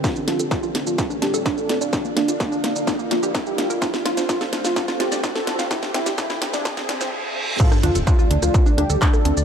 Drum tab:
CC |----------------|----------------|----------------|----------------|
HH |--xx--x---x---x-|--xx--x---x---x-|--xx--x---x---x-|--xx--x---x-----|
SH |xx-xxx-xxx-xxx-x|xx-xxx-xxx-xxx-x|xx-xxx-xxx-xxx-x|xx-xxx-xxx-x----|
CP |----------------|----------------|----------------|----------------|
SD |o-o-o-o-o-o-o-o-|o-o-o-o-o-o-o-o-|oooooooooooooooo|oooooooooooo----|
BD |o---o---o---o---|o---o---o---o---|o---o---o---o---|o---o---o-------|

CC |x---------------|
HH |--xx--x---x---x-|
SH |xx-xxx-xxx-xxx-x|
CP |------------x---|
SD |-r--r--r--r--r--|
BD |o---o---o---o---|